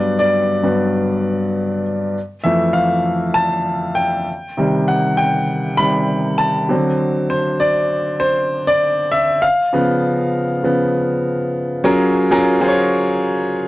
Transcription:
0.00 0.62 G2 medium
0.00 0.63 F#3 soft
0.00 0.63 B3 soft
0.00 0.16 D5 medium
0.19 1.81 D5 medium
0.63 0.91 G2 soft
0.63 0.91 F#3 soft
0.63 0.91 B3 soft
2.44 4.23 F2 medium
2.44 4.23 E3 soft
2.44 4.24 A3 medium
2.44 2.76 E5 medium
2.73 3.31 F5 medium
3.34 3.98 A5 medium
3.95 4.53 G5 medium
4.57 5.45 C3 soft
4.57 5.45 D#3 soft
4.57 5.45 G3 medium
4.88 5.19 F#5 medium
5.17 5.80 G5 medium
5.77 6.06 C3 soft
5.77 6.06 D#3 soft
5.77 6.06 G3 medium
5.77 6.41 B5 loud
6.38 6.95 A5 medium
6.69 7.11 D3 medium
6.69 7.11 F#3 medium
6.69 7.11 C4 medium
7.30 7.58 C5 medium
7.60 8.17 D5 medium
8.20 8.64 C5 medium
8.67 9.13 D5 loud
9.12 9.43 E5 loud
9.42 11.20 F5 medium
9.73 10.14 C#3 medium
9.73 10.14 F3 medium
9.73 10.15 B3 medium
10.63 10.91 C#3 soft
10.63 10.91 F3 soft
10.63 10.92 B3 medium
11.84 12.24 F#3 medium
11.84 12.24 C#4 medium
11.84 12.24 F4 medium
11.84 12.24 G#4 medium
11.84 12.24 A#4 medium
12.31 12.57 F#3 medium
12.31 12.57 C#4 medium
12.31 12.57 F4 medium
12.31 12.57 G#4 medium
12.31 12.57 A#4 loud
12.60 13.63 F#3 medium
12.60 13.63 C#4 medium
12.60 13.63 F4 medium
12.60 13.63 G#4 medium
12.60 12.68 C5 medium
12.68 13.67 C#5 medium

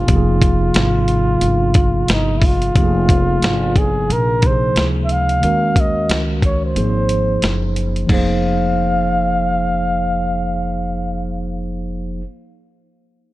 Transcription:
0.00 2.10 F4 medium
0.07 0.72 F1 medium
0.07 2.70 C3 medium
0.07 2.71 F3 medium
0.07 2.71 A#3 medium
0.07 2.72 D#4 medium
0.07 0.17 G4 medium
0.07 kick loud
0.07 closed hi-hat medium
0.16 2.75 G#4 medium
0.42 kick medium
0.42 closed hi-hat medium
0.74 1.39 G#1 medium
0.74 snare loud
0.74 closed hi-hat medium
1.08 closed hi-hat medium
1.41 2.05 G1 medium
1.41 closed hi-hat medium
1.74 kick medium
1.74 closed hi-hat medium
2.08 2.72 G1 medium
2.08 2.39 D#4 medium
2.08 snare loud
2.08 closed hi-hat medium
2.38 2.47 E4 medium
2.38 kick medium
2.42 3.79 F4 medium
2.42 open hi-hat soft
2.62 closed hi-hat soft
2.74 3.39 F1 medium
2.74 4.38 C3 medium
2.74 4.38 F3 medium
2.74 4.39 A#3 medium
2.74 4.39 D#4 medium
2.74 2.84 G4 medium
2.74 kick loud
2.74 closed hi-hat medium
2.84 4.43 G#4 medium
3.09 kick medium
3.09 closed hi-hat medium
3.42 4.06 G1 medium
3.42 snare loud
3.42 closed hi-hat medium
3.76 4.14 G#4 medium
3.76 kick medium
3.76 closed hi-hat medium
4.10 4.73 A#1 loud
4.10 4.48 A#4 medium
4.10 closed hi-hat medium
4.42 5.42 C3 soft
4.42 5.42 F3 soft
4.42 5.42 A#3 soft
4.42 5.43 D#4 soft
4.42 4.50 G4 soft
4.42 kick medium
4.42 closed hi-hat medium
4.47 5.46 G#4 soft
4.47 4.87 C5 loud
4.76 5.39 C#2 medium
4.76 snare loud
4.76 closed hi-hat medium
5.04 5.13 E5 medium
5.09 5.82 F5 loud
5.09 closed hi-hat medium
5.29 closed hi-hat soft
5.41 6.06 D#2 medium
5.41 6.72 D#3 medium
5.41 6.73 G#3 medium
5.41 6.73 C#4 medium
5.41 6.74 F#4 medium
5.41 6.74 A#4 medium
5.41 closed hi-hat medium
5.76 kick medium
5.76 closed hi-hat medium
5.80 6.18 D#5 medium
6.09 6.72 C#2 medium
6.09 snare loud
6.09 closed hi-hat medium
6.42 6.62 C#5 medium
6.42 kick medium
6.42 closed hi-hat medium
6.65 7.73 C5 medium
6.76 7.39 G#1 medium
6.76 8.05 F3 medium
6.76 8.07 A#3 medium
6.76 8.07 D#4 medium
6.76 8.07 G#4 medium
6.76 8.07 C5 medium
6.76 closed hi-hat medium
7.09 closed hi-hat medium
7.42 8.06 F#1 medium
7.42 snare loud
7.42 closed hi-hat medium
7.76 closed hi-hat medium
7.96 closed hi-hat soft
8.07 12.22 F1 medium
8.07 12.20 F3 medium
8.07 12.21 A#3 medium
8.07 12.22 D#4 medium
8.07 11.52 F5 medium
8.07 kick medium
8.07 crash medium
8.12 12.23 G#4 medium
8.12 12.24 C5 medium

